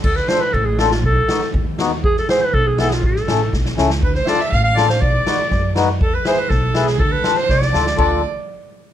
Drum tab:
CC |x-------|--------|--------|--------|
SD |-oo---oo|--oo--o-|-oo---oo|-oo-oooo|
BD |o---o---|o---o---|o---o---|o---o---|

CC |--------|--------|--------|--------|
SD |-oooo-oo|--o-o-o-|--o-o-oo|--oooooo|
BD |o---o---|o---o---|o---o---|o---o---|

CC |x-------|
SD |--------|
BD |o-------|